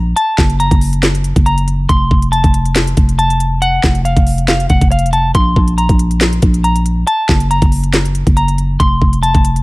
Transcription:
Already playing: A#1 A#5
0.16 A5, closed hi-hat
0.38 F#1, kick, snare, clap
0.50 closed hi-hat
0.60 A#5, closed hi-hat
0.71 F#1, kick, closed hi-hat
0.81 open hi-hat
0.93 closed hi-hat
1.03 snare, clap, closed hi-hat
1.15 closed hi-hat
1.24 closed hi-hat
1.36 F#1, kick, closed hi-hat
1.46 A#5, closed hi-hat
1.58 closed hi-hat
1.68 closed hi-hat
1.89 F1 C6, kick, closed hi-hat
2.11 F1, kick
2.22 closed hi-hat
2.32 A5, closed hi-hat
2.44 F1, kick, closed hi-hat
2.54 closed hi-hat
2.65 closed hi-hat
2.76 snare, clap, closed hi-hat
2.87 closed hi-hat
2.97 F1, kick, closed hi-hat
3.09 closed hi-hat
3.19 A5, closed hi-hat
3.30 closed hi-hat
3.40 closed hi-hat
3.62 F#5, closed hi-hat
3.83 F1, kick, snare, clap
3.95 closed hi-hat
4.05 F5, closed hi-hat
4.17 F1, kick, closed hi-hat
4.27 open hi-hat
4.38 closed hi-hat
4.48 F5, snare, clap, closed hi-hat
4.60 closed hi-hat
4.70 F1 F#5, kick, closed hi-hat
4.81 F1, kick, closed hi-hat
4.91 F5, closed hi-hat
4.99 closed hi-hat
5.06 closed hi-hat
5.13 A5, closed hi-hat
5.35 A#1 C6, kick, closed hi-hat
5.56 A#1, kick
5.68 closed hi-hat
5.78 A#5, closed hi-hat
5.89 A#1, kick, closed hi-hat
5.99 closed hi-hat
6.11 closed hi-hat
6.21 snare, clap, closed hi-hat
6.33 closed hi-hat
6.42 A#1, kick, closed hi-hat
6.54 closed hi-hat
6.64 A#5, closed hi-hat
6.76 closed hi-hat
6.86 closed hi-hat
7.07 A5, closed hi-hat
7.29 F#1, kick, snare, clap
7.40 closed hi-hat
7.51 A#5, closed hi-hat
7.62 F#1, kick, closed hi-hat
7.72 open hi-hat
7.83 closed hi-hat
7.93 snare, clap, closed hi-hat
8.05 closed hi-hat
8.15 closed hi-hat
8.27 F#1, kick, closed hi-hat
8.37 A#5, closed hi-hat
8.48 closed hi-hat
8.58 closed hi-hat
8.80 F1 C6, kick, closed hi-hat
9.02 F1, kick
9.13 closed hi-hat
9.23 A5, closed hi-hat
9.35 F1, kick, closed hi-hat
9.45 closed hi-hat
9.56 closed hi-hat

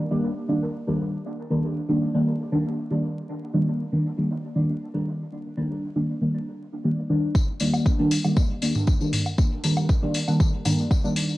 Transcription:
0.11 D#3 G3 A#3 D4
0.48 D#3 G3 A#3 D4
0.87 D#3 G3 A#3 D4
1.50 D#3 G3 A#3 D4
1.89 D#3 G3 A#3 D4
2.14 D#3 G3 A#3 D4
2.52 D#3 G3 A#3 D4
2.91 D#3 G3 A#3 D4
3.54 D#3 G3 A#3 D4
3.92 D#3 G3 A#3 D4
4.18 D#3 G3 A#3 D4
4.55 D#3 G3 A#3 D4
4.94 D#3 G3 A#3 D4
5.57 D#3 G3 A#3 D4
5.96 D#3 G3 A#3 D4
6.21 D#3 G3 A#3 D4
6.84 D#3 G3 A#3 D4
7.10 D#3 G3 A#3 D4
7.35 kick, tambourine
7.60 D#3 G3 A#3 D4, open hi-hat, tambourine
7.74 tambourine, low woodblock
7.86 kick, tambourine
7.99 D#3 G3 A#3 D4
8.11 open hi-hat, tambourine
8.24 D#3 G3 A#3 D4, tambourine, low woodblock
8.36 kick, tambourine
8.62 D#3 G3 A#3 D4, open hi-hat, tambourine
8.75 mid tom, tambourine
8.87 kick, tambourine
9.01 D#3 G3 A#3 D4, tambourine
9.13 mid tom, open hi-hat, tambourine
9.26 tambourine, low woodblock
9.38 kick, tambourine
9.64 D#3 G3 A#3 D4, open hi-hat, tambourine
9.77 tambourine, low woodblock
9.89 kick, tambourine
10.02 D#3 G3 A#3 D4
10.14 open hi-hat, tambourine
10.28 D#3 G3 A#3 D4, tambourine, low woodblock
10.40 kick, tambourine
10.65 D#3 G3 A#3 D4, mid tom, open hi-hat, tambourine, low woodblock
10.78 tambourine
10.91 kick, tambourine, low woodblock
11.04 D#3 G3 A#3 D4, tambourine
11.16 open hi-hat, tambourine
11.29 tambourine

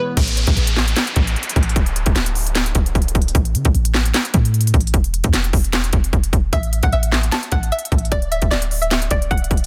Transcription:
Already playing: B2 E3 G#3 B3 G#4 B4 E5
0.17 A1, kick, closed hi-hat, crash, downlifter
0.27 closed hi-hat
0.37 closed hi-hat
0.47 A1, kick, closed hi-hat
0.57 A1, closed hi-hat
0.67 closed hi-hat
0.77 snare, clap
0.88 closed hi-hat
0.96 snare, clap, closed hi-hat
1.07 closed hi-hat
1.16 A1, kick, closed hi-hat
1.27 closed hi-hat
1.36 closed hi-hat
1.43 closed hi-hat
1.49 closed hi-hat
1.56 A1, kick, closed hi-hat
1.63 closed hi-hat
1.69 closed hi-hat
1.76 D1, kick, closed hi-hat
1.86 closed hi-hat
1.96 closed hi-hat
2.06 D1, kick, closed hi-hat
2.16 D1, snare, clap, closed hi-hat
2.26 closed hi-hat
2.35 open hi-hat
2.47 closed hi-hat
2.55 snare, clap, closed hi-hat
2.66 closed hi-hat
2.75 D1, kick, closed hi-hat
2.86 closed hi-hat
2.95 D1, kick, closed hi-hat
3.02 closed hi-hat
3.08 closed hi-hat
3.15 D1, kick, closed hi-hat
3.22 closed hi-hat
3.28 closed hi-hat
3.35 A1, kick, closed hi-hat
3.45 closed hi-hat
3.55 C#3, closed hi-hat
3.65 A1, kick, closed hi-hat
3.75 A1, closed hi-hat
3.85 closed hi-hat
3.94 snare, clap
4.05 closed hi-hat
4.14 snare, clap, closed hi-hat
4.25 closed hi-hat
4.34 A2, kick, closed hi-hat
4.45 closed hi-hat
4.54 closed hi-hat
4.61 closed hi-hat
4.67 closed hi-hat
4.74 A1, kick, closed hi-hat
4.81 closed hi-hat
4.87 closed hi-hat
4.94 E1, kick, closed hi-hat
5.04 closed hi-hat
5.14 closed hi-hat
5.24 E2, kick, closed hi-hat
5.33 E1, snare, clap, closed hi-hat
5.44 closed hi-hat
5.53 E1, kick, open hi-hat
5.64 closed hi-hat
5.73 snare, clap, closed hi-hat
5.84 closed hi-hat
5.93 E1, kick, closed hi-hat
6.04 closed hi-hat
6.13 E1, kick, closed hi-hat
6.24 closed hi-hat
6.33 E1, kick, closed hi-hat
6.53 A1 E5, kick, closed hi-hat
6.63 closed hi-hat
6.73 closed hi-hat
6.83 A1 F#5, kick, closed hi-hat
6.92 A1 E5, closed hi-hat
7.03 closed hi-hat
7.12 snare, clap
7.23 closed hi-hat
7.32 A5, snare, clap, closed hi-hat
7.43 closed hi-hat
7.52 A1 F#5, kick, closed hi-hat
7.63 closed hi-hat
7.72 E5, closed hi-hat
7.79 closed hi-hat
7.85 closed hi-hat
7.92 A1, kick, closed hi-hat
7.98 closed hi-hat
8.05 closed hi-hat
8.12 D1 D5, kick, closed hi-hat
8.22 closed hi-hat
8.31 E5, closed hi-hat
8.42 D1, kick, closed hi-hat
8.51 D1 D5, snare, clap, closed hi-hat
8.62 closed hi-hat
8.71 open hi-hat
8.82 E5, closed hi-hat
8.91 snare, clap, closed hi-hat
9.02 closed hi-hat
9.11 D1 D5, kick, closed hi-hat
9.22 closed hi-hat
9.31 D1 F#5, kick, closed hi-hat
9.38 closed hi-hat
9.44 closed hi-hat
9.51 D1, kick, closed hi-hat
9.57 closed hi-hat

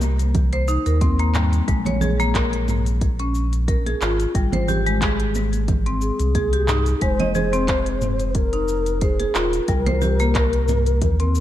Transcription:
Already playing: C2 A#4
0.01 muted conga, cabasa
0.19 closed hi-hat, high conga, cabasa
0.35 kick, closed hi-hat, low conga, cabasa
0.53 C5, closed hi-hat
0.68 D#4, cabasa
0.86 D#2 A#4, closed hi-hat, cabasa
1.01 C4, kick, closed hi-hat, high conga, cabasa
1.19 A#3, closed hi-hat
1.34 G3, clap, mid tom, cabasa
1.53 closed hi-hat, cabasa
1.68 A#1 G#3, kick, closed hi-hat, cabasa
1.85 C#5, closed hi-hat, high conga, low conga
2.01 G#4, low conga, cabasa
2.20 A#3, closed hi-hat, cabasa
2.35 A#4, kick, clap, closed hi-hat, cabasa
2.53 closed hi-hat
2.68 mid tom, muted conga, cabasa
2.86 closed hi-hat, cabasa
3.01 kick, closed hi-hat, cabasa
3.19 C#4, closed hi-hat
3.35 cabasa
3.53 closed hi-hat, cabasa
3.68 A#4, kick, closed hi-hat, cabasa
3.86 G#4, closed hi-hat, muted conga
4.02 G#1 F4, clap, cabasa
4.20 closed hi-hat, cabasa
4.35 G#1 G3, kick, closed hi-hat, cabasa
4.52 C5, closed hi-hat, muted conga, high conga, low conga
4.68 G4, low conga, cabasa
4.86 G#3, closed hi-hat, cabasa
5.02 G#4, kick, clap, closed hi-hat, cabasa
5.20 closed hi-hat
5.35 muted conga, cabasa
5.53 closed hi-hat, high conga, cabasa
5.68 kick, closed hi-hat, low conga, cabasa
5.86 C4, closed hi-hat
6.01 G#4, cabasa
6.20 C2, closed hi-hat, cabasa
6.35 G#4, kick, closed hi-hat, high conga, cabasa
6.53 G4, closed hi-hat
6.68 D#4, clap, mid tom, cabasa
6.86 closed hi-hat, cabasa
7.01 F1 G#3 C5, kick, closed hi-hat, cabasa
7.19 D#5, closed hi-hat, high conga, low conga
7.35 G#4 C5, low conga, cabasa
7.53 C4, closed hi-hat, cabasa
7.68 C5, kick, clap, closed hi-hat, cabasa
7.86 closed hi-hat
8.02 mid tom, muted conga, cabasa
8.20 closed hi-hat, cabasa
8.29 C5
8.35 A#4, kick, closed hi-hat, cabasa
8.53 D#4, closed hi-hat
8.68 cabasa
8.86 closed hi-hat, cabasa
9.01 G#4 C5, kick, closed hi-hat, cabasa
9.20 G#4, closed hi-hat, muted conga
9.35 D#1 F4 A#4, clap, cabasa
9.53 closed hi-hat, cabasa
9.68 C2 G3, kick, closed hi-hat, cabasa
9.86 C5, closed hi-hat, muted conga, high conga, low conga
10.01 G4, low conga, cabasa
10.20 A#3, closed hi-hat, cabasa
10.35 A#4, kick, clap, closed hi-hat, cabasa
10.53 closed hi-hat
10.68 mid tom, muted conga, cabasa
10.86 closed hi-hat, high conga, cabasa
11.02 D#2, kick, closed hi-hat, low conga, cabasa
11.20 C4, closed hi-hat
11.35 cabasa

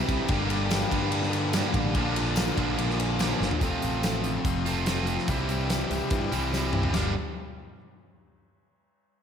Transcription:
Already playing: C3 E3 G3 C4 E4
0.08 C2 G3 C4 E4 G4, kick, ride
0.18 C4 E4 G4
0.28 G1 G2 D3 G3 A#3 D4 G4, kick, ride
0.33 D4
0.49 G3 A#3 D4 G4, ride
0.69 G2 D3 G3 A#3 D4 G4, snare, ride, tambourine
0.90 G2 G3 A#3 D4 G4, kick, ride
0.94 G2 D3
1.01 G3 A#3 D4 G4
1.12 ride
1.21 G3 A#3 D4 G4, snare
1.31 G3 A#3 D4 G4, ride
1.52 G2 D3 G3 A#3 D4 G4, snare, ride, tambourine
1.73 A1 G3 A#3 D4 G4, kick, ride
1.84 G3 A#3 D4 G4
1.95 A#1 A#2 D3 F3 A#3 D4 F4 A#4, kick, ride
2.16 F3 A#3 D4 A#4, ride
2.36 A#2 D3 F3 A#3 D4 A#4, snare, ride, tambourine
2.57 A#1 A#2 D3 F3 A#3 D4 A#4, kick, ride
2.78 A#1, ride
2.89 F3 A#3 D4 A#4, snare
3.00 F3 A#3 D4 A#4, ride
3.19 A#2 D3 F3 A#3 D4 A#4, snare, ride, tambourine
3.41 G1 F3 A#3 D4 A#4, snare
3.50 F3 A#3 D4 A#4, floor tom
3.60 F1 F2 C3 F3 A3 C4 F4 A4, kick, closed hi-hat, tambourine
3.82 A1 F3 C4 F4 A4, closed hi-hat, tambourine
3.93 tambourine
4.02 F3 C4 F4 A4, snare, closed hi-hat, tambourine
4.14 tambourine
4.23 F3 C4 F4 A4, closed hi-hat, tambourine
4.44 F1 F2 C3 F3 A3 C4 F4, kick, closed hi-hat, tambourine
4.55 C4 F4 A4
4.65 F3 A3 C4 F4 A4, closed hi-hat, tambourine
4.86 F3 A3 C4 F4 A4, snare, closed hi-hat, tambourine
5.07 F3 C4 F4 A4, closed hi-hat
5.16 C4 F4 A4, snare
5.27 C2 C3 E3 G3 C4 E4 G4, kick, closed hi-hat, tambourine
5.38 C4 E4 G4, tambourine
5.48 G3 C4 E4 G4, closed hi-hat, tambourine
5.60 tambourine
5.69 C3 G3 C4 E4 G4, snare, closed hi-hat, tambourine
5.81 tambourine
5.89 C2 G3 C4 E4 G4, closed hi-hat, tambourine
6.10 G2 C3 E3 G3 C4 E4, kick, closed hi-hat, tambourine
6.20 C4 E4 G4
6.31 C2 E3 G3 C4 E4 G4, closed hi-hat, tambourine
6.35 C3
6.52 C3 E3 G3 C4 E4 G4, snare, tambourine
6.57 C4 E4
6.72 G3 C4 E4 G4, mid tom
6.83 C4 E4 G4, floor tom
6.93 G1 G2 D3 G3 A#3 D4 G4, snare, floor tom, china, tambourine

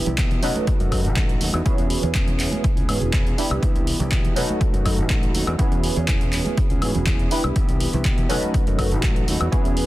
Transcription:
Already playing: D4 E4 G4 B4
0.05 C2 B3 E4 G4, closed hi-hat, low conga, shaker
0.17 B2 E3 B3 E4 G4, kick, clap, closed hi-hat
0.31 closed hi-hat, low conga, shaker
0.42 F#3 A3 C#4 D#4 F#4 A4 B4, open hi-hat, shaker
0.55 closed hi-hat, high conga, shaker
0.67 kick, closed hi-hat
0.79 F#2 A3 D#4 F#4, closed hi-hat, shaker
0.91 F#3 A3 D#4 F#4, kick, open hi-hat, high conga, high woodblock, shaker
1.04 A1 A3 D#4 F#4, closed hi-hat, shaker
1.16 F#3 A3 D#4 F#4, kick, clap, closed hi-hat
1.29 closed hi-hat
1.40 D#2 F#3 A3 D#4 F#4, open hi-hat
1.53 E2 A3 D#4 F#4, high conga, high woodblock, shaker
1.65 E3 B3 C#4 E4 F#4 G#4 B4, kick, closed hi-hat, shaker
1.78 E2, closed hi-hat, shaker
1.90 open hi-hat
2.02 E2 B3 C#4 G#4, closed hi-hat, low conga, shaker
2.14 E1 E3 B3 C#4 G#4, kick, clap, closed hi-hat
2.27 closed hi-hat, low conga, shaker
2.40 clap, open hi-hat
2.51 B3 C#4 G#4, closed hi-hat, high conga, shaker
2.64 muted fingered electric bass stroke, kick, closed hi-hat, shaker
2.76 C#2 B3 C#4 G#4, closed hi-hat, shaker
2.88 G#2 E3 B3 C#4 G#4, open hi-hat, high conga, high woodblock, shaker
3.01 E1 B3 C#4 G#4, closed hi-hat, low conga, shaker
3.13 E3 B3 C#4 G#4, kick, clap, closed hi-hat
3.27 closed hi-hat
3.37 E3 B3 D4 E4 G4 B4, open hi-hat
3.50 C2 B3 E4 G4, closed hi-hat, high conga, high woodblock, shaker
3.62 E3 B3 E4 G4, kick, closed hi-hat
3.75 C2, closed hi-hat, shaker
3.87 open hi-hat
3.99 C2 B3 E4 G4, closed hi-hat, low conga, shaker
4.11 B2 E3 B3 E4 G4, kick, clap, closed hi-hat
4.25 closed hi-hat, low conga, shaker
4.35 F#3 A3 C#4 D#4 F#4 A4 B4, open hi-hat, shaker
4.49 closed hi-hat, high conga, shaker
4.61 kick, closed hi-hat
4.72 F#2 A3 D#4 F#4, closed hi-hat, shaker
4.84 F#3 A3 D#4 F#4, kick, open hi-hat, high conga, high woodblock, shaker
4.98 A1, closed hi-hat, shaker
5.09 F#3 A3 D#4 F#4, kick, clap, closed hi-hat
5.23 closed hi-hat
5.33 D#2 F#3 A3 D#4 F#4, open hi-hat
5.46 E2 A3 D#4 F#4, closed hi-hat, high conga, high woodblock, shaker
5.58 E3 B3 C#4 E4 F#4 G#4 B4, kick, closed hi-hat, shaker
5.72 E2, closed hi-hat
5.84 open hi-hat
5.96 E2 B3 C#4 G#4, closed hi-hat, low conga, shaker
6.08 E1 E3 B3 C#4 G#4, kick, clap, closed hi-hat
6.21 closed hi-hat, low conga, shaker
6.33 clap, open hi-hat, shaker
6.45 B3 C#4 G#4, closed hi-hat, high conga, shaker
6.57 muted fingered electric bass stroke, kick, closed hi-hat, shaker
6.69 C#2 B3 C#4 G#4, closed hi-hat, shaker
6.81 G#2 E3 B3 C#4 G#4, open hi-hat, high conga, high woodblock, shaker
6.94 E1 B3 C#4 G#4, closed hi-hat, low conga, shaker
7.06 E3 B3 C#4 G#4, kick, clap, closed hi-hat
7.19 closed hi-hat
7.30 E3 B3 D4 E4 G4 B4, open hi-hat
7.43 C2 B3 E4 G4, closed hi-hat, high conga, high woodblock, shaker
7.55 E3 B3 E4 G4, kick, closed hi-hat
7.69 C2, closed hi-hat, shaker
7.80 open hi-hat
7.92 C2 B3 E4 G4, closed hi-hat, low conga, shaker
8.05 B2 E3 B3 E4 G4, kick, clap, closed hi-hat
8.17 closed hi-hat, low conga, shaker
8.29 F#3 A3 C#4 D#4 F#4 A4 B4, open hi-hat
8.43 closed hi-hat, high conga, shaker
8.54 kick, closed hi-hat, shaker
8.66 F#2 A3 D#4 F#4, closed hi-hat, shaker
8.78 F#3 A3 D#4 F#4, kick, open hi-hat, high conga, high woodblock, shaker
8.91 A1 A3 D#4 F#4, closed hi-hat, shaker
9.02 F#3 A3 D#4 F#4, kick, clap, closed hi-hat
9.16 closed hi-hat
9.27 D#2 F#3 A3 D#4 F#4, open hi-hat
9.40 E2 A3 D#4 F#4, high conga, high woodblock, shaker
9.52 E3 B3 C#4 E4 F#4 G#4 B4, kick, closed hi-hat, shaker
9.65 E2, closed hi-hat, shaker
9.77 open hi-hat

